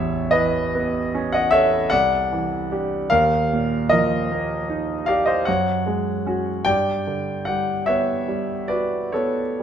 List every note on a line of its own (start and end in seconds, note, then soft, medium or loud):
0.00 1.89 A1 medium
0.00 0.58 E2 soft
0.00 0.29 C#5 medium
0.00 0.33 E5 medium
0.31 0.98 E3 soft
0.31 1.28 B4 medium
0.31 1.32 D#5 medium
0.75 1.37 B3 soft
1.15 1.77 C#4 medium
1.32 1.52 D#5 medium
1.32 1.52 F#5 medium
1.51 1.92 A4 soft
1.51 1.89 C#5 medium
1.51 1.91 E5 medium
1.90 3.09 C2 soft
1.90 3.07 D5 medium
1.90 3.11 F#5 medium
2.32 2.96 E3 soft
2.72 3.08 D4 soft
2.72 3.08 G4 soft
3.10 5.43 D#2 medium
3.10 3.87 A#4 medium
3.10 3.91 F5 loud
3.53 4.16 A#2 soft
3.89 4.55 F3 soft
3.89 5.03 A#4 medium
3.89 5.07 D#5 medium
4.32 4.93 A#3 soft
4.70 5.31 D#4 soft
5.06 5.48 G4 soft
5.06 5.26 D5 medium
5.06 5.27 F5 medium
5.26 5.46 C5 soft
5.26 5.46 D#5 medium
5.45 6.63 F#2 soft
5.45 6.62 C#5 medium
5.45 6.65 F#5 medium
5.86 6.50 G#3 soft
6.26 6.62 C#4 soft
6.26 6.63 F#4 soft
6.65 9.63 G2 medium
6.65 7.42 D5 medium
6.65 7.46 G5 medium
7.07 7.71 D3 soft
7.45 8.12 G3 soft
7.45 7.84 D5 soft
7.45 7.86 F#5 medium
7.86 8.54 B3 soft
7.86 8.66 C#5 medium
7.86 8.70 E5 medium
8.28 8.96 G3 soft
8.68 9.41 F#4 soft
8.68 9.10 B4 soft
8.68 9.13 D5 medium
9.12 9.63 B3 soft
9.12 9.63 A4 soft
9.12 9.63 C#5 medium
9.60 9.63 G3 soft